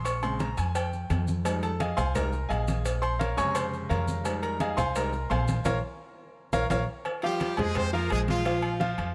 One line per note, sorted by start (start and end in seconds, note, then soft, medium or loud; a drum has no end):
0.00 0.52 A#1 medium
0.05 0.22 C#6 loud
0.05 cowbell loud
0.05 high conga soft
0.05 low agogo medium
0.05 maracas medium
0.22 0.46 C#3 medium
0.22 0.46 G#3 soft
0.22 0.46 C4 medium
0.22 0.40 C6 loud
0.22 high conga soft
0.22 low agogo loud
0.22 maracas soft
0.39 0.57 A#5 medium
0.39 cowbell medium
0.39 high conga loud
0.39 maracas soft
0.57 1.07 F2 medium
0.57 0.75 G#5 medium
0.57 cowbell medium
0.57 high conga soft
0.57 low agogo medium
0.57 maracas medium
0.75 1.24 G5 medium
0.75 cowbell loud
0.75 high conga soft
0.75 low agogo loud
0.75 maracas medium
0.93 high conga soft
0.93 maracas soft
1.10 1.92 F2 medium
1.10 cowbell medium
1.10 high conga medium
1.10 low timbale medium
1.10 low agogo medium
1.10 maracas soft
1.27 high conga medium
1.27 maracas medium
1.45 1.68 G3 medium
1.45 1.68 G#3 medium
1.45 1.69 D#4 medium
1.45 cowbell loud
1.45 high conga soft
1.45 low agogo loud
1.45 maracas medium
1.63 1.80 A4 medium
1.63 1.80 A5 medium
1.63 high conga soft
1.63 low agogo medium
1.63 maracas soft
1.80 1.97 G#4 medium
1.80 1.97 D#5 medium
1.80 1.95 F5 medium
1.80 1.96 G#5 medium
1.80 cowbell medium
1.80 high conga loud
1.80 low agogo medium
1.80 maracas soft
1.97 2.47 C2 medium
1.97 2.15 C5 medium
1.97 2.15 F5 medium
1.97 2.15 G#5 medium
1.97 2.14 C6 loud
1.97 high conga soft
1.97 low conga medium
1.97 low agogo loud
1.97 maracas medium
2.14 2.31 G3 soft
2.14 2.31 G#3 soft
2.14 2.31 D#4 medium
2.14 2.48 A#4 medium
2.14 2.48 A#5 medium
2.14 cowbell loud
2.14 high conga soft
2.14 low conga medium
2.14 low agogo medium
2.14 maracas medium
2.32 high conga soft
2.32 maracas soft
2.49 3.32 A#1 loud
2.49 2.99 G#4 medium
2.49 2.99 D#5 medium
2.49 2.99 F5 medium
2.49 2.98 G#5 medium
2.49 cowbell medium
2.49 high conga soft
2.49 low agogo loud
2.49 maracas soft
2.68 cowbell medium
2.68 high conga medium
2.68 maracas medium
2.85 cowbell loud
2.85 high conga soft
2.85 low agogo medium
2.85 maracas loud
3.02 3.20 C5 medium
3.02 3.19 C6 loud
3.02 high conga soft
3.02 low agogo loud
3.02 maracas soft
3.19 3.37 A#4 medium
3.19 3.36 C#5 medium
3.19 3.37 F5 medium
3.19 3.36 A#5 medium
3.19 cowbell medium
3.19 high conga loud
3.19 maracas soft
3.37 3.87 F2 medium
3.37 4.21 C3 medium
3.37 4.21 C#3 medium
3.37 4.21 G#3 medium
3.37 3.55 C#5 loud
3.37 3.55 G#5 loud
3.37 3.55 A#5 medium
3.37 3.55 C#6 loud
3.37 cowbell medium
3.37 high conga soft
3.37 low agogo medium
3.37 maracas medium
3.55 3.88 C5 medium
3.55 3.88 C6 medium
3.55 cowbell loud
3.55 high conga soft
3.55 low agogo loud
3.55 maracas medium
3.73 high conga soft
3.73 maracas soft
3.89 4.72 F2 medium
3.89 4.39 A#4 medium
3.89 4.22 C#5 medium
3.89 4.39 F5 medium
3.89 4.39 A#5 medium
3.89 cowbell medium
3.89 high conga medium
3.89 low agogo medium
3.89 maracas soft
4.08 high conga medium
4.08 maracas medium
4.24 4.75 G3 medium
4.24 4.75 G#3 medium
4.24 4.75 D#4 medium
4.24 cowbell loud
4.24 high conga soft
4.24 low agogo loud
4.24 maracas loud
4.42 4.60 A#4 medium
4.42 4.60 A#5 loud
4.42 high conga soft
4.42 low agogo medium
4.42 maracas soft
4.60 4.78 G#4 medium
4.60 4.78 D#5 medium
4.60 4.76 F5 medium
4.60 4.76 G#5 medium
4.60 cowbell medium
4.60 high conga loud
4.60 low agogo medium
4.60 maracas soft
4.77 5.27 C2 medium
4.77 4.95 C5 medium
4.77 4.95 F5 medium
4.77 4.95 G#5 medium
4.77 4.95 C6 loud
4.77 high conga soft
4.77 low conga medium
4.77 low agogo loud
4.77 maracas medium
4.95 5.11 G3 medium
4.95 5.12 G#3 medium
4.95 5.12 D#4 medium
4.95 5.29 A#4 medium
4.95 5.29 A#5 medium
4.95 cowbell loud
4.95 high conga soft
4.95 low agogo medium
4.95 maracas medium
5.13 high conga soft
5.13 maracas soft
5.30 5.63 A#1 loud
5.30 5.63 C5 medium
5.30 5.63 F5 medium
5.30 5.63 G#5 medium
5.30 5.63 C6 loud
5.30 cowbell medium
5.30 high conga soft
5.30 low timbale medium
5.30 low agogo loud
5.30 maracas soft
5.48 cowbell medium
5.48 high conga medium
5.48 maracas medium
5.65 5.78 A#1 loud
5.65 5.77 A#4 loud
5.65 5.77 C#5 medium
5.65 5.77 F5 medium
5.65 cowbell loud
5.65 high conga loud
5.65 high timbale loud
5.65 maracas loud
6.53 6.66 A#1 loud
6.53 6.64 A#4 loud
6.53 6.64 C#5 loud
6.53 6.64 F5 loud
6.53 cowbell medium
6.53 high conga loud
6.53 high timbale loud
6.53 maracas loud
6.70 6.84 A#1 loud
6.70 6.82 A#4 medium
6.70 6.82 C#5 loud
6.70 6.82 F5 medium
6.70 cowbell loud
6.70 high conga loud
6.70 high timbale loud
6.70 maracas loud
7.05 cowbell loud
7.05 high conga soft
7.05 low agogo loud
7.22 7.52 F3 medium
7.22 7.57 G3 medium
7.22 7.52 F4 medium
7.22 7.56 G4 loud
7.22 7.52 F5 loud
7.22 high conga soft
7.22 low agogo medium
7.40 cowbell medium
7.40 high conga loud
7.40 low agogo medium
7.57 8.07 F2 loud
7.57 7.87 G#3 medium
7.57 7.77 G#3 medium
7.57 7.87 G#4 medium
7.57 7.77 G#4 loud
7.57 7.87 C5 medium
7.57 high conga soft
7.57 low conga medium
7.57 low agogo loud
7.75 7.94 C4 medium
7.75 7.93 C5 loud
7.75 cowbell loud
7.75 high conga soft
7.75 low conga medium
7.75 low agogo medium
7.93 8.08 F3 loud
7.93 8.10 A#3 medium
7.93 8.08 F4 loud
7.93 8.10 A#4 loud
7.93 8.08 F5 medium
7.93 high conga soft
8.10 8.93 A#1 loud
8.10 8.39 G#3 medium
8.10 8.20 G#3 medium
8.10 8.40 G#4 medium
8.10 8.20 G#4 loud
8.10 8.40 C5 medium
8.10 cowbell medium
8.10 high conga soft
8.10 low agogo loud
8.28 8.95 F3 medium
8.28 8.95 F4 loud
8.28 cowbell medium
8.28 high conga loud
8.45 8.74 F3 medium
8.45 8.74 F4 medium
8.45 8.75 F5 medium
8.45 cowbell loud
8.45 high conga soft
8.45 low agogo medium
8.62 high conga soft
8.62 low agogo loud
8.80 9.09 F3 medium
8.80 9.09 F4 medium
8.80 9.09 F5 medium
8.80 cowbell medium
8.80 high conga loud
8.98 9.15 F2 loud
8.98 cowbell medium
8.98 high conga soft
8.98 low agogo medium